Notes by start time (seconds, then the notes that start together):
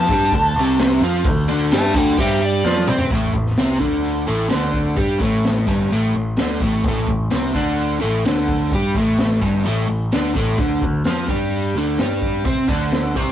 Already playing: F4 A5
0.09 G2 G3 G4, kick
0.32 D2 D3, kick, open hi-hat
0.56 C2 C3
0.60 C4
0.78 snare, open hi-hat
1.00 F2 F3 F4
1.24 D2 D3, kick, open hi-hat
1.48 D2 D3 D4
1.71 G2 G3 G4 E5 A5, snare, open hi-hat
1.94 D2 D3 D4 D5 G5, kick
2.17 G2 G3 G4 C5 E5, kick, open hi-hat
2.45 D5
2.64 F2 F3 F4, snare
2.76 high tom
2.88 C3 C4 C5, mid tom
2.98 floor tom
3.10 A1 A2 A3, kick, open hi-hat
3.33 A1 A2, kick
3.47 snare
3.57 C2 C3, snare, open hi-hat
3.61 C4
3.79 D2 D3 D4, kick
4.04 open hi-hat
4.27 A1 A2 A3
4.49 D2 D3 D4, snare, open hi-hat
4.73 kick
4.96 G2 G3 G4, kick, open hi-hat
5.19 A1 A2 A3, kick
5.44 snare, open hi-hat
5.66 G1 G2 G3, kick
5.90 A1 A2 A3, open hi-hat
6.15 A1 A2
6.36 D2 D3 D4, snare, open hi-hat
6.60 A1 A2 A3, kick
6.84 A1, kick, open hi-hat
6.88 A2 A3
7.07 A1 A2, kick
7.30 C2 C3 C4, snare, open hi-hat
7.53 D2 D3 D4, kick
7.78 open hi-hat
8.00 A1 A2 A3
8.25 D2 D3 D4, snare, open hi-hat
8.48 kick
8.71 G2 G3 G4, kick, open hi-hat
8.95 A1 A2 A3, kick
9.18 snare, open hi-hat
9.41 G1 G2 G3, kick
9.64 A1 A2 A3, open hi-hat
9.88 A1 A2
10.11 D2 D3 D4, snare, open hi-hat
10.35 A1 A2 A3, kick
10.57 D2 D3 D4, kick, open hi-hat
10.81 D2 D3, kick
11.04 F2 F3 F4, snare, open hi-hat
11.28 G2 G3 G4, kick
11.51 open hi-hat
11.74 D2 D3 D4
11.98 G2 G3 G4, snare, open hi-hat
12.22 kick
12.45 C3 C4 C5, kick, open hi-hat
12.68 D2 D3 D4, kick
12.91 snare, open hi-hat
13.15 C2 C3 C4, kick